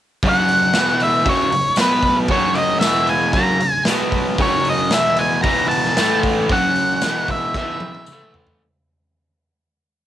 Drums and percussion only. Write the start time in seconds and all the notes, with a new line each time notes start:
0.23 kick, open hi-hat
0.48 open hi-hat
0.73 snare, open hi-hat, tambourine
0.88 snare
1.00 open hi-hat
1.25 kick, open hi-hat
1.52 open hi-hat
1.76 snare, open hi-hat, tambourine
2.03 kick, open hi-hat
2.28 kick, open hi-hat
2.55 open hi-hat
2.81 snare, open hi-hat, tambourine
2.95 snare
3.07 open hi-hat
3.33 kick, open hi-hat
3.61 open hi-hat
3.85 snare, open hi-hat, tambourine
4.12 kick, open hi-hat
4.38 kick, open hi-hat
4.65 open hi-hat
4.91 snare, open hi-hat, tambourine
5.05 snare
5.17 open hi-hat
5.44 kick, open hi-hat
5.71 open hi-hat
5.85 snare
5.97 snare, open hi-hat, tambourine
6.23 kick, open hi-hat
6.49 kick, open hi-hat
6.76 open hi-hat
7.02 snare, open hi-hat, tambourine
7.28 kick, open hi-hat
7.54 kick, snare
7.80 high tom
7.95 high tom
8.06 mid tom, tambourine
8.34 floor tom
8.47 floor tom